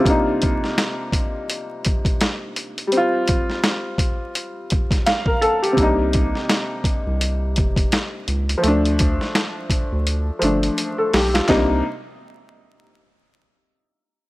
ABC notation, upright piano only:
X:1
M:4/4
L:1/16
Q:"Swing 16ths" 1/4=84
K:Cdor
V:1 name="Upright piano"
F z12 z3 | z12 f B [Aa] G- | G z12 z3 | z12 z A G F- |
F z12 z3 |]
V:2 name="Upright piano"
[C,G,B,DE]16 | [G,CF]16 | [C,G,B,DE]16 | [F,A,D]8- [F,A,D]2 [F,A,D]6 |
[C,G,B,DE]2 z12 z2 |]